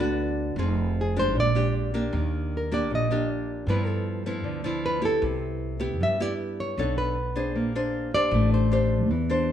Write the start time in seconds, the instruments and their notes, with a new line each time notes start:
Already playing: upright bass D2, nylon-string guitar D3 B4
0.00 nylon-string guitar B3 D4 F#4
0.56 upright bass F1, nylon-string guitar F3 C4 D#4 G#4
1.01 nylon-string guitar G#4
1.16 nylon-string guitar G#3 D4 G4 C5
1.34 upright bass A#1, nylon-string guitar A#2
1.40 nylon-string guitar D5
1.55 nylon-string guitar G#3 D4 G4
1.94 nylon-string guitar A#3 D4 G4
2.13 upright bass D#2, nylon-string guitar D#3
2.57 nylon-string guitar A#4
2.72 nylon-string guitar A#3 D4 G4 D5
2.89 upright bass A#1, nylon-string guitar A#2
2.95 nylon-string guitar D#5
3.11 nylon-string guitar A#3 D4 G4
3.67 upright bass G2, nylon-string guitar G2 F3 B3 E4 B4
3.87 nylon-string guitar A4
4.26 nylon-string guitar F3 B3 E4
4.44 upright bass D2, nylon-string guitar D3
4.64 nylon-string guitar F3 B3 E4
4.86 nylon-string guitar B4
5.02 nylon-string guitar B3 E4 G4 A4
5.22 upright bass C2, nylon-string guitar C3
5.80 nylon-string guitar B3 E4 G4
5.99 upright bass G2, nylon-string guitar G2 E5
6.20 nylon-string guitar B3 E4 G4 D5
6.60 nylon-string guitar C#5
6.77 upright bass B1, nylon-string guitar B3 D4 A4 C#5
6.98 nylon-string guitar B4
7.36 nylon-string guitar D4 G#4 C5
7.55 upright bass A#1, nylon-string guitar A#3
7.75 nylon-string guitar D4 G#4 C5
8.14 nylon-string guitar D4 G4 C5 D5
8.31 upright bass A1, nylon-string guitar A3
8.54 nylon-string guitar C5
8.72 nylon-string guitar D4 G4 C5
9.08 upright bass E2, nylon-string guitar E3
9.30 nylon-string guitar D4 G4 C5